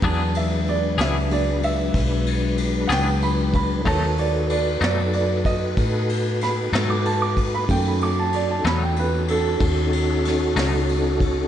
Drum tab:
RD |xxxxxxxxxxxx|xxxxxxxxxxxx|xxxxxxxxxxxx|
SD |---o-----o--|---o----oo--|---o----oo--|
BD |o-----o----o|o----oo----o|o-----o----o|